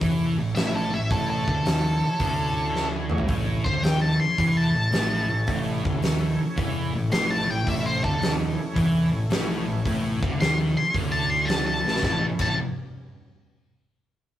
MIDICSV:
0, 0, Header, 1, 6, 480
1, 0, Start_track
1, 0, Key_signature, 3, "major"
1, 0, Tempo, 545455
1, 976, Time_signature, 4, 2, 24, 8
1, 12664, End_track
2, 0, Start_track
2, 0, Title_t, "Lead electric guitar"
2, 0, Program_c, 0, 29
2, 485, Note_on_c, 0, 76, 92
2, 645, Note_off_c, 0, 76, 0
2, 663, Note_on_c, 0, 69, 88
2, 815, Note_off_c, 0, 69, 0
2, 826, Note_on_c, 0, 76, 97
2, 976, Note_off_c, 0, 76, 0
2, 981, Note_on_c, 0, 69, 87
2, 1134, Note_off_c, 0, 69, 0
2, 1143, Note_on_c, 0, 69, 98
2, 2545, Note_off_c, 0, 69, 0
2, 3208, Note_on_c, 0, 72, 103
2, 3368, Note_off_c, 0, 72, 0
2, 3375, Note_on_c, 0, 79, 97
2, 3529, Note_off_c, 0, 79, 0
2, 3532, Note_on_c, 0, 81, 92
2, 3690, Note_off_c, 0, 81, 0
2, 3694, Note_on_c, 0, 84, 94
2, 4006, Note_off_c, 0, 84, 0
2, 4023, Note_on_c, 0, 81, 98
2, 4952, Note_off_c, 0, 81, 0
2, 6269, Note_on_c, 0, 84, 105
2, 6419, Note_off_c, 0, 84, 0
2, 6428, Note_on_c, 0, 81, 92
2, 6603, Note_off_c, 0, 81, 0
2, 6603, Note_on_c, 0, 79, 99
2, 6746, Note_off_c, 0, 79, 0
2, 6761, Note_on_c, 0, 76, 94
2, 6905, Note_off_c, 0, 76, 0
2, 6915, Note_on_c, 0, 72, 86
2, 7062, Note_off_c, 0, 72, 0
2, 7077, Note_on_c, 0, 69, 99
2, 7329, Note_off_c, 0, 69, 0
2, 9158, Note_on_c, 0, 84, 103
2, 9304, Note_off_c, 0, 84, 0
2, 9481, Note_on_c, 0, 84, 81
2, 9626, Note_off_c, 0, 84, 0
2, 9784, Note_on_c, 0, 81, 86
2, 9937, Note_off_c, 0, 81, 0
2, 9943, Note_on_c, 0, 84, 81
2, 10077, Note_on_c, 0, 81, 101
2, 10097, Note_off_c, 0, 84, 0
2, 10244, Note_off_c, 0, 81, 0
2, 10266, Note_on_c, 0, 81, 92
2, 10574, Note_off_c, 0, 81, 0
2, 10603, Note_on_c, 0, 81, 76
2, 10774, Note_off_c, 0, 81, 0
2, 10925, Note_on_c, 0, 81, 84
2, 11060, Note_off_c, 0, 81, 0
2, 12664, End_track
3, 0, Start_track
3, 0, Title_t, "Tonewheel organ"
3, 0, Program_c, 1, 16
3, 0, Note_on_c, 1, 57, 68
3, 0, Note_on_c, 1, 61, 67
3, 0, Note_on_c, 1, 64, 69
3, 0, Note_on_c, 1, 73, 70
3, 2850, Note_off_c, 1, 57, 0
3, 2852, Note_off_c, 1, 73, 0
3, 2854, Note_off_c, 1, 64, 0
3, 2856, Note_off_c, 1, 61, 0
3, 2886, Note_on_c, 1, 57, 66
3, 2889, Note_on_c, 1, 61, 62
3, 2898, Note_on_c, 1, 73, 67
3, 2901, Note_on_c, 1, 64, 66
3, 6698, Note_off_c, 1, 57, 0
3, 6699, Note_off_c, 1, 61, 0
3, 6704, Note_off_c, 1, 73, 0
3, 6705, Note_off_c, 1, 64, 0
3, 6741, Note_on_c, 1, 74, 60
3, 6742, Note_on_c, 1, 62, 60
3, 6745, Note_on_c, 1, 65, 64
3, 6747, Note_on_c, 1, 58, 64
3, 6900, Note_off_c, 1, 62, 0
3, 6900, Note_off_c, 1, 74, 0
3, 6902, Note_off_c, 1, 65, 0
3, 6902, Note_on_c, 1, 61, 66
3, 6903, Note_off_c, 1, 58, 0
3, 6905, Note_on_c, 1, 57, 64
3, 6908, Note_on_c, 1, 73, 63
3, 6912, Note_on_c, 1, 64, 67
3, 10547, Note_off_c, 1, 61, 0
3, 10548, Note_off_c, 1, 57, 0
3, 10550, Note_off_c, 1, 73, 0
3, 10552, Note_off_c, 1, 64, 0
3, 10573, Note_on_c, 1, 61, 69
3, 10579, Note_on_c, 1, 73, 65
3, 10586, Note_on_c, 1, 57, 70
3, 10590, Note_on_c, 1, 64, 68
3, 10960, Note_off_c, 1, 61, 0
3, 10963, Note_off_c, 1, 73, 0
3, 10966, Note_off_c, 1, 57, 0
3, 10969, Note_off_c, 1, 64, 0
3, 12664, End_track
4, 0, Start_track
4, 0, Title_t, "Distorted electric guitar"
4, 0, Program_c, 2, 30
4, 15, Note_on_c, 2, 52, 107
4, 331, Note_off_c, 2, 52, 0
4, 343, Note_on_c, 2, 45, 74
4, 465, Note_off_c, 2, 45, 0
4, 499, Note_on_c, 2, 45, 91
4, 810, Note_off_c, 2, 45, 0
4, 821, Note_on_c, 2, 45, 69
4, 945, Note_off_c, 2, 45, 0
4, 983, Note_on_c, 2, 45, 93
4, 1295, Note_off_c, 2, 45, 0
4, 1302, Note_on_c, 2, 50, 95
4, 1448, Note_off_c, 2, 50, 0
4, 1451, Note_on_c, 2, 51, 101
4, 1770, Note_off_c, 2, 51, 0
4, 1928, Note_on_c, 2, 50, 102
4, 2728, Note_off_c, 2, 50, 0
4, 2738, Note_on_c, 2, 45, 98
4, 2889, Note_off_c, 2, 45, 0
4, 2899, Note_on_c, 2, 45, 97
4, 3214, Note_off_c, 2, 45, 0
4, 3219, Note_on_c, 2, 50, 92
4, 3371, Note_off_c, 2, 50, 0
4, 3381, Note_on_c, 2, 51, 98
4, 3695, Note_off_c, 2, 51, 0
4, 3866, Note_on_c, 2, 52, 106
4, 4172, Note_off_c, 2, 52, 0
4, 4176, Note_on_c, 2, 45, 67
4, 4303, Note_off_c, 2, 45, 0
4, 4335, Note_on_c, 2, 45, 86
4, 4652, Note_off_c, 2, 45, 0
4, 4663, Note_on_c, 2, 45, 70
4, 4787, Note_off_c, 2, 45, 0
4, 4826, Note_on_c, 2, 45, 95
4, 5136, Note_off_c, 2, 45, 0
4, 5139, Note_on_c, 2, 50, 95
4, 5291, Note_off_c, 2, 50, 0
4, 5306, Note_on_c, 2, 51, 101
4, 5618, Note_off_c, 2, 51, 0
4, 5777, Note_on_c, 2, 52, 102
4, 6093, Note_off_c, 2, 52, 0
4, 6117, Note_on_c, 2, 45, 71
4, 6234, Note_off_c, 2, 45, 0
4, 6260, Note_on_c, 2, 45, 90
4, 6572, Note_off_c, 2, 45, 0
4, 6583, Note_on_c, 2, 45, 69
4, 6707, Note_off_c, 2, 45, 0
4, 6724, Note_on_c, 2, 45, 93
4, 7047, Note_off_c, 2, 45, 0
4, 7058, Note_on_c, 2, 50, 101
4, 7211, Note_off_c, 2, 50, 0
4, 7217, Note_on_c, 2, 51, 101
4, 7534, Note_off_c, 2, 51, 0
4, 7695, Note_on_c, 2, 52, 105
4, 8013, Note_off_c, 2, 52, 0
4, 8022, Note_on_c, 2, 45, 71
4, 8147, Note_off_c, 2, 45, 0
4, 8186, Note_on_c, 2, 45, 86
4, 8498, Note_off_c, 2, 45, 0
4, 8512, Note_on_c, 2, 45, 73
4, 8632, Note_off_c, 2, 45, 0
4, 8673, Note_on_c, 2, 45, 91
4, 8981, Note_off_c, 2, 45, 0
4, 8985, Note_on_c, 2, 50, 99
4, 9135, Note_off_c, 2, 50, 0
4, 9147, Note_on_c, 2, 51, 97
4, 9459, Note_off_c, 2, 51, 0
4, 9632, Note_on_c, 2, 50, 102
4, 10422, Note_off_c, 2, 50, 0
4, 10430, Note_on_c, 2, 45, 92
4, 10571, Note_off_c, 2, 45, 0
4, 10581, Note_on_c, 2, 45, 76
4, 10585, Note_on_c, 2, 52, 90
4, 10585, Note_on_c, 2, 57, 82
4, 10588, Note_on_c, 2, 61, 94
4, 10595, Note_on_c, 2, 64, 89
4, 10776, Note_off_c, 2, 45, 0
4, 10778, Note_off_c, 2, 52, 0
4, 10778, Note_off_c, 2, 57, 0
4, 10779, Note_off_c, 2, 61, 0
4, 10783, Note_off_c, 2, 64, 0
4, 10915, Note_on_c, 2, 45, 87
4, 10915, Note_on_c, 2, 52, 85
4, 10917, Note_on_c, 2, 57, 82
4, 10922, Note_on_c, 2, 61, 94
4, 10922, Note_on_c, 2, 64, 95
4, 11034, Note_off_c, 2, 45, 0
4, 11034, Note_off_c, 2, 52, 0
4, 11035, Note_off_c, 2, 57, 0
4, 11038, Note_off_c, 2, 61, 0
4, 11038, Note_off_c, 2, 64, 0
4, 12664, End_track
5, 0, Start_track
5, 0, Title_t, "Fingered electric bass"
5, 0, Program_c, 3, 33
5, 5, Note_on_c, 3, 40, 87
5, 313, Note_off_c, 3, 40, 0
5, 326, Note_on_c, 3, 33, 77
5, 474, Note_off_c, 3, 33, 0
5, 480, Note_on_c, 3, 33, 86
5, 790, Note_off_c, 3, 33, 0
5, 818, Note_on_c, 3, 33, 73
5, 964, Note_off_c, 3, 33, 0
5, 972, Note_on_c, 3, 33, 95
5, 1277, Note_off_c, 3, 33, 0
5, 1295, Note_on_c, 3, 38, 85
5, 1442, Note_off_c, 3, 38, 0
5, 1450, Note_on_c, 3, 39, 82
5, 1756, Note_off_c, 3, 39, 0
5, 1933, Note_on_c, 3, 38, 84
5, 2705, Note_off_c, 3, 38, 0
5, 2740, Note_on_c, 3, 33, 91
5, 2882, Note_off_c, 3, 33, 0
5, 2887, Note_on_c, 3, 33, 91
5, 3194, Note_off_c, 3, 33, 0
5, 3217, Note_on_c, 3, 38, 86
5, 3356, Note_off_c, 3, 38, 0
5, 3361, Note_on_c, 3, 39, 79
5, 3671, Note_off_c, 3, 39, 0
5, 3856, Note_on_c, 3, 40, 91
5, 4159, Note_off_c, 3, 40, 0
5, 4177, Note_on_c, 3, 33, 73
5, 4323, Note_off_c, 3, 33, 0
5, 4331, Note_on_c, 3, 33, 86
5, 4637, Note_off_c, 3, 33, 0
5, 4654, Note_on_c, 3, 33, 78
5, 4802, Note_off_c, 3, 33, 0
5, 4822, Note_on_c, 3, 33, 91
5, 5122, Note_off_c, 3, 33, 0
5, 5148, Note_on_c, 3, 38, 89
5, 5272, Note_off_c, 3, 38, 0
5, 5277, Note_on_c, 3, 39, 80
5, 5590, Note_off_c, 3, 39, 0
5, 5786, Note_on_c, 3, 40, 90
5, 6085, Note_off_c, 3, 40, 0
5, 6101, Note_on_c, 3, 33, 82
5, 6237, Note_off_c, 3, 33, 0
5, 6243, Note_on_c, 3, 33, 88
5, 6553, Note_off_c, 3, 33, 0
5, 6569, Note_on_c, 3, 33, 77
5, 6720, Note_off_c, 3, 33, 0
5, 6747, Note_on_c, 3, 33, 99
5, 7046, Note_off_c, 3, 33, 0
5, 7071, Note_on_c, 3, 38, 92
5, 7206, Note_off_c, 3, 38, 0
5, 7212, Note_on_c, 3, 39, 79
5, 7518, Note_off_c, 3, 39, 0
5, 7708, Note_on_c, 3, 40, 89
5, 8007, Note_off_c, 3, 40, 0
5, 8021, Note_on_c, 3, 33, 77
5, 8166, Note_off_c, 3, 33, 0
5, 8184, Note_on_c, 3, 33, 84
5, 8485, Note_off_c, 3, 33, 0
5, 8512, Note_on_c, 3, 33, 78
5, 8653, Note_off_c, 3, 33, 0
5, 8667, Note_on_c, 3, 33, 94
5, 8966, Note_off_c, 3, 33, 0
5, 8998, Note_on_c, 3, 38, 90
5, 9136, Note_off_c, 3, 38, 0
5, 9150, Note_on_c, 3, 39, 76
5, 9448, Note_off_c, 3, 39, 0
5, 9626, Note_on_c, 3, 38, 88
5, 10393, Note_off_c, 3, 38, 0
5, 10424, Note_on_c, 3, 33, 91
5, 10569, Note_off_c, 3, 33, 0
5, 10584, Note_on_c, 3, 33, 98
5, 10764, Note_off_c, 3, 33, 0
5, 10908, Note_on_c, 3, 33, 95
5, 11051, Note_off_c, 3, 33, 0
5, 12664, End_track
6, 0, Start_track
6, 0, Title_t, "Drums"
6, 12, Note_on_c, 9, 36, 99
6, 15, Note_on_c, 9, 46, 55
6, 100, Note_off_c, 9, 36, 0
6, 103, Note_off_c, 9, 46, 0
6, 491, Note_on_c, 9, 46, 51
6, 505, Note_on_c, 9, 38, 106
6, 579, Note_off_c, 9, 46, 0
6, 593, Note_off_c, 9, 38, 0
6, 971, Note_on_c, 9, 46, 55
6, 975, Note_on_c, 9, 36, 98
6, 1059, Note_off_c, 9, 46, 0
6, 1063, Note_off_c, 9, 36, 0
6, 1300, Note_on_c, 9, 36, 88
6, 1388, Note_off_c, 9, 36, 0
6, 1456, Note_on_c, 9, 46, 58
6, 1470, Note_on_c, 9, 38, 107
6, 1544, Note_off_c, 9, 46, 0
6, 1558, Note_off_c, 9, 38, 0
6, 1932, Note_on_c, 9, 46, 57
6, 1936, Note_on_c, 9, 36, 106
6, 2020, Note_off_c, 9, 46, 0
6, 2024, Note_off_c, 9, 36, 0
6, 2424, Note_on_c, 9, 38, 59
6, 2512, Note_off_c, 9, 38, 0
6, 2724, Note_on_c, 9, 45, 73
6, 2800, Note_on_c, 9, 43, 83
6, 2812, Note_off_c, 9, 45, 0
6, 2888, Note_off_c, 9, 43, 0
6, 2888, Note_on_c, 9, 46, 51
6, 2894, Note_on_c, 9, 36, 103
6, 2976, Note_off_c, 9, 46, 0
6, 2982, Note_off_c, 9, 36, 0
6, 3221, Note_on_c, 9, 36, 91
6, 3309, Note_off_c, 9, 36, 0
6, 3374, Note_on_c, 9, 46, 49
6, 3387, Note_on_c, 9, 38, 103
6, 3462, Note_off_c, 9, 46, 0
6, 3475, Note_off_c, 9, 38, 0
6, 3858, Note_on_c, 9, 36, 99
6, 3858, Note_on_c, 9, 46, 52
6, 3946, Note_off_c, 9, 36, 0
6, 3946, Note_off_c, 9, 46, 0
6, 4331, Note_on_c, 9, 46, 52
6, 4344, Note_on_c, 9, 38, 99
6, 4419, Note_off_c, 9, 46, 0
6, 4432, Note_off_c, 9, 38, 0
6, 4814, Note_on_c, 9, 46, 52
6, 4821, Note_on_c, 9, 36, 99
6, 4902, Note_off_c, 9, 46, 0
6, 4909, Note_off_c, 9, 36, 0
6, 5150, Note_on_c, 9, 36, 91
6, 5238, Note_off_c, 9, 36, 0
6, 5300, Note_on_c, 9, 46, 56
6, 5313, Note_on_c, 9, 38, 99
6, 5388, Note_off_c, 9, 46, 0
6, 5401, Note_off_c, 9, 38, 0
6, 5783, Note_on_c, 9, 46, 54
6, 5787, Note_on_c, 9, 36, 101
6, 5871, Note_off_c, 9, 46, 0
6, 5875, Note_off_c, 9, 36, 0
6, 6260, Note_on_c, 9, 46, 56
6, 6273, Note_on_c, 9, 38, 108
6, 6348, Note_off_c, 9, 46, 0
6, 6361, Note_off_c, 9, 38, 0
6, 6749, Note_on_c, 9, 36, 96
6, 6754, Note_on_c, 9, 46, 55
6, 6837, Note_off_c, 9, 36, 0
6, 6842, Note_off_c, 9, 46, 0
6, 7076, Note_on_c, 9, 36, 90
6, 7164, Note_off_c, 9, 36, 0
6, 7233, Note_on_c, 9, 46, 52
6, 7246, Note_on_c, 9, 38, 112
6, 7321, Note_off_c, 9, 46, 0
6, 7334, Note_off_c, 9, 38, 0
6, 7711, Note_on_c, 9, 36, 103
6, 7715, Note_on_c, 9, 46, 52
6, 7799, Note_off_c, 9, 36, 0
6, 7803, Note_off_c, 9, 46, 0
6, 8188, Note_on_c, 9, 46, 51
6, 8201, Note_on_c, 9, 38, 108
6, 8276, Note_off_c, 9, 46, 0
6, 8289, Note_off_c, 9, 38, 0
6, 8673, Note_on_c, 9, 36, 98
6, 8675, Note_on_c, 9, 46, 49
6, 8761, Note_off_c, 9, 36, 0
6, 8763, Note_off_c, 9, 46, 0
6, 8999, Note_on_c, 9, 36, 97
6, 9087, Note_off_c, 9, 36, 0
6, 9156, Note_on_c, 9, 46, 52
6, 9170, Note_on_c, 9, 38, 107
6, 9244, Note_off_c, 9, 46, 0
6, 9258, Note_off_c, 9, 38, 0
6, 9631, Note_on_c, 9, 36, 96
6, 9635, Note_on_c, 9, 46, 57
6, 9719, Note_off_c, 9, 36, 0
6, 9723, Note_off_c, 9, 46, 0
6, 10107, Note_on_c, 9, 46, 54
6, 10120, Note_on_c, 9, 38, 104
6, 10195, Note_off_c, 9, 46, 0
6, 10208, Note_off_c, 9, 38, 0
6, 10450, Note_on_c, 9, 38, 56
6, 10525, Note_off_c, 9, 38, 0
6, 10525, Note_on_c, 9, 38, 80
6, 10585, Note_on_c, 9, 36, 99
6, 10589, Note_off_c, 9, 38, 0
6, 10589, Note_on_c, 9, 38, 81
6, 10673, Note_off_c, 9, 36, 0
6, 10677, Note_off_c, 9, 38, 0
6, 10902, Note_on_c, 9, 49, 83
6, 10909, Note_on_c, 9, 36, 92
6, 10990, Note_off_c, 9, 49, 0
6, 10997, Note_off_c, 9, 36, 0
6, 12664, End_track
0, 0, End_of_file